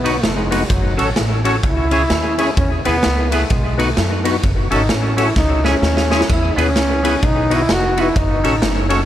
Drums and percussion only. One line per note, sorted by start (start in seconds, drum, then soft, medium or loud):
0.06 ride medium
0.23 snare loud
0.23 ride medium
0.52 open hi-hat medium
0.52 ride medium
0.70 kick loud
0.70 hi-hat pedal medium
0.70 ride medium
0.99 ride medium
1.16 snare loud
1.16 ride medium
1.45 ride medium
1.63 kick loud
1.63 ride medium
1.91 ride medium
2.10 snare loud
2.10 ride medium
2.39 ride medium
2.57 kick loud
2.57 ride medium
2.85 ride medium
3.03 snare loud
3.03 ride medium
3.32 ride medium
3.50 kick loud
3.50 ride medium
3.79 ride medium
3.97 snare loud
3.97 ride medium
4.25 ride medium
4.43 kick loud
4.43 ride medium
4.71 ride medium
4.89 snare loud
4.89 ride medium
5.18 ride medium
5.36 kick loud
5.36 snare medium
5.65 snare medium
5.83 snare medium
5.97 snare medium
6.12 snare loud
6.21 snare loud
6.30 kick loud
6.30 splash medium
6.58 ride medium
6.76 snare loud
6.76 ride medium
7.05 ride medium
7.23 kick loud
7.23 ride medium
7.51 ride medium
7.69 snare loud
7.69 ride medium
7.97 ride medium
8.16 kick loud
8.16 ride medium
8.44 ride medium
8.62 snare loud
8.62 ride medium
8.90 ride medium